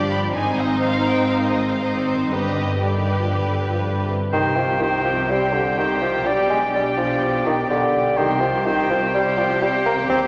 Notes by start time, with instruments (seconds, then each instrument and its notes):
Already playing: double bass section G1, cello section G2, viola section F3 D4, french horn section F3 D4, violin section G4 D5
0.11 violin section B5
0.35 double bass section G#1, cello section G#2, french horn section D#3 C4, viola section D#3 C4, violin section D#4 C5 G#5
0.59 violin section D#5
0.83 violin section F5
1.08 violin section G5
1.31 violin section F5
1.44 violin section D#5
1.71 violin section F5
1.81 viola section D#3 C4, french horn section D#3 C4, violin section D#4 C5 D#5
1.97 violin section D5
2.06 violin section C5
2.31 double bass section G1, cello section G2, viola section D3 D4, french horn section D3 B3, violin section G4 B4 D#5
2.82 viola section D3 D4, french horn section D3, violin section G4 B4 D5
2.94 french horn section D#3
3.19 french horn section F3
3.44 french horn section G3
3.69 french horn section F3
3.96 french horn section C3
4.22 french horn section D3
4.32 double bass section C2, cello section C3, timpani C3, bassoon D#3, viola section C4, french horn section C4 G4, violin section G4 G5, clarinet G4, oboe C5, flute section G5
4.56 bassoon F3
4.81 bassoon D#3, clarinet G4, oboe C5, flute section G5
5.05 bassoon F3
5.29 bassoon G3, french horn section C4 G4, clarinet G4, oboe C5, flute section G5
5.53 bassoon D3
5.78 bassoon D#3, clarinet G4, oboe C5, flute section G5
6.02 bassoon F3
6.26 double bass section B1, cello section B2, bassoon G3, viola section D4, french horn section D4 G4, clarinet G4, oboe D5, flute section G5
6.50 bassoon G#3
6.74 bassoon G3, clarinet G4, oboe D5, flute section G5
6.98 bassoon F3
7.22 french horn section D4 G4
7.46 bassoon D#3
7.70 bassoon D3, clarinet G4, oboe D5, flute section G5
8.16 double bass section C2, cello section C3, timpani C3, bassoon D#3, french horn section C4 G4, viola section C4, violin section G4 G5, clarinet G4, oboe C5, flute section G5
8.41 bassoon F3
8.64 bassoon D#3, clarinet G4, oboe C5, flute section G5
8.90 bassoon F3
9.13 bassoon G3, french horn section C4 G4, clarinet G4, oboe C5, flute section G5
9.38 bassoon F3
9.61 bassoon G3, clarinet G4, oboe C5, flute section G5
9.86 bassoon A#3
10.09 cello section D#2, double bass section D#2, bassoon C4, french horn section C4 G4, clarinet G4, oboe C5, flute section G5